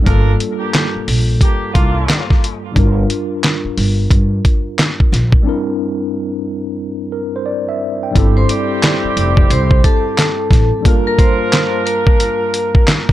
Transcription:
0.02 tine electric piano G2 G3 A#3
0.06 upright bass G1, horn section D4 F4 A#4, tine electric piano F4 A4, kick, closed hi-hat
0.40 closed hi-hat
0.59 horn section A#3 D4 G4
0.74 snare, clap, closed hi-hat
0.95 muted upright bass stroke
1.08 upright bass A#1, open hi-hat
1.41 horn section A#3 D4 G4, kick, closed hi-hat
1.74 upright bass C2, horn section A#3 D4 F4, kick, closed hi-hat
2.09 snare, clap, closed hi-hat
2.30 kick, snare
2.44 closed hi-hat
2.72 tine electric piano G2 G3 D4
2.76 upright bass G1, tine electric piano E4 A#4, kick, closed hi-hat
2.84 tine electric piano F4
3.10 closed hi-hat
3.43 snare, clap, closed hi-hat
3.65 muted upright bass stroke
3.77 upright bass G1, open hi-hat
4.11 upright bass G2, kick, closed hi-hat
4.45 kick, closed hi-hat
4.79 snare, clap, closed hi-hat
5.00 kick
5.12 upright bass A#1, snare, closed hi-hat
5.32 kick
5.42 tine electric piano G2 G3 C4
5.46 tine electric piano D4 E4 A#4
7.12 tine electric piano A#4
7.36 tine electric piano C5
7.46 tine electric piano D5
7.69 tine electric piano E5
8.03 tine electric piano G5
8.11 tine electric piano G2 G3 C4
8.16 upright bass G1, horn section C4 E4 G4, tine electric piano E4 A4, kick, closed hi-hat
8.37 vibraphone C5 C6
8.49 vibraphone D5 D6, closed hi-hat
8.83 snare, clap, closed hi-hat
9.04 muted upright bass stroke
9.17 upright bass F1, vibraphone D5 D6, closed hi-hat
9.37 kick
9.50 upright bass C2, vibraphone C5 C6, closed hi-hat
9.71 kick
9.84 vibraphone A4 A5, kick, closed hi-hat
10.18 snare, clap, closed hi-hat
10.51 upright bass A1, kick, snare, closed hi-hat
10.81 tine electric piano G2 G3 A#3
10.85 horn section D4 F4 A#4, tine electric piano F4 A#4, kick, closed hi-hat
11.07 vibraphone A#4 A#5
11.18 vibraphone C5 C6, kick, closed hi-hat
11.52 snare, clap, closed hi-hat
11.85 vibraphone A#4 A#5, closed hi-hat
12.07 kick
12.20 closed hi-hat
12.54 closed hi-hat
12.75 kick
12.88 snare, clap, closed hi-hat
13.09 kick, snare

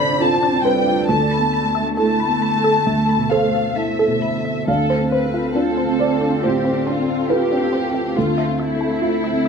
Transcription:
Already playing: felt piano A2 C3 C4 F4 A4 C5 D5, cello D4, ambient pad D4 A4 D5, violin section B5
0.20 cello C4, felt piano F4, synth pluck A4, violin section A5
0.43 synth pluck D4
0.50 felt piano C4
0.64 cello G3, felt piano B4, synth pluck C5, violin section G5
0.79 felt piano A4
0.87 synth pluck F4
1.07 felt piano D2 A4, cello A3, ambient pad A3 A4, synth pluck A4, violin section A5
1.31 synth pluck B5
1.38 felt piano B3
1.53 synth pluck B5
1.68 felt piano A4
1.75 synth pluck E5
1.97 felt piano E4, synth pluck A4, violin section A5
2.20 synth pluck B5
2.27 felt piano B3
2.42 synth pluck B5
2.57 felt piano A4
2.64 synth pluck A4
2.86 felt piano D2, synth pluck E5
3.09 synth pluck B5
3.17 felt piano B2
3.30 synth pluck A4, felt piano C5, violin section F5
3.45 felt piano A4
3.75 felt piano E4, violin section E5, synth pluck A5
3.99 synth pluck A4
4.06 felt piano B2
4.22 synth pluck B5
4.38 felt piano A4
4.45 synth pluck E5
4.67 felt piano D2 F5, ambient pad C4 A4 F5, cello C4, synth pluck D4, violin section A4
4.90 synth pluck C5
4.98 felt piano C4
5.12 violin section B4, synth pluck C5
5.26 felt piano A4
5.34 synth pluck F4
5.55 synth pluck D4, felt piano F4, violin section A4
5.77 synth pluck C5
5.85 felt piano C4
5.99 synth pluck C5, felt piano D5
6.15 felt piano A4
6.21 synth pluck D4
6.43 felt piano A2 C5, synth pluck F4, violin section G4
6.65 synth pluck C5
6.73 felt piano C4
6.86 synth pluck D4, violin section F4
7.02 felt piano A4
7.29 felt piano F4 B4, violin section G4, synth pluck A4
7.52 synth pluck D4
7.59 felt piano C4
7.73 synth pluck C5
7.89 felt piano A4
7.94 synth pluck F4
8.15 felt piano D2 A4, cello A3, ambient pad C4 A4 E5, synth pluck F4, violin section F4
8.38 synth pluck E5
8.46 felt piano C4
8.59 violin section E4, synth pluck E5
8.75 felt piano A4
8.81 synth pluck A4
9.02 felt piano E4, synth pluck F4
9.24 synth pluck E5
9.33 felt piano C4
9.45 synth pluck E5

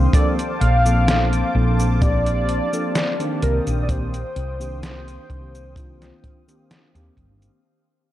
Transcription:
Already playing: analog synth pad C5 F5 G5
0.13 tine electric piano F3 A#3 C4 D4 A4, soft synth lead D5, analog synth pad A5 D6, kick, closed hi-hat, cabasa
0.39 closed hi-hat, cabasa
0.60 fretless electric bass A#1, soft synth lead F5, closed hi-hat
0.85 tine electric piano F3 A#3 C4 D4 A4, closed hi-hat, cabasa
1.08 snare, closed hi-hat, cabasa
1.33 closed hi-hat, cabasa
1.54 fretless electric bass A#1, tine electric piano F3 A#3 C4 D4 A4
1.80 closed hi-hat, cabasa
2.01 tine electric piano F3 A#3 C4 D4 G4, soft synth lead D5, kick, closed hi-hat, cabasa
2.26 closed hi-hat, cabasa
2.49 closed hi-hat
2.72 tine electric piano F3 A#3 C4 D4 A4, closed hi-hat, cabasa
2.95 snare, closed hi-hat, cabasa
3.19 tine electric piano D#3 A#3 C4 D4 G4, closed hi-hat, cabasa
3.42 fretless electric bass C2, soft synth lead A#4, analog synth pad G5 D#6, closed hi-hat
3.67 fretless electric bass A#1, closed hi-hat, cabasa
3.82 soft synth lead D5
3.88 tine electric piano D#3 A#3 C4 D4 G4, soft synth lead C5, kick, closed hi-hat, cabasa
4.14 closed hi-hat, cabasa
4.36 fretless electric bass C2, closed hi-hat
4.59 tine electric piano D#3 A#3 C4 D4 G4, closed hi-hat, cabasa
4.83 snare, closed hi-hat, cabasa
5.08 closed hi-hat, cabasa
5.29 fretless electric bass C2, tine electric piano D#3 A#3 C4 D4 G4, kick, closed hi-hat
5.55 closed hi-hat, cabasa
5.76 tine electric piano D#3 A#3 C4 D4 F4, kick, closed hi-hat, cabasa
6.02 snare, closed hi-hat, cabasa
6.24 kick, closed hi-hat
6.47 tine electric piano D#3 A#3 C4 D4 G4, closed hi-hat, cabasa
6.71 snare, closed hi-hat, cabasa
6.94 fretless electric bass D#2, tine electric piano D#3 A#3 C4 D4 G4, closed hi-hat, cabasa
7.17 fretless electric bass G1, kick, closed hi-hat
7.42 closed hi-hat, cabasa

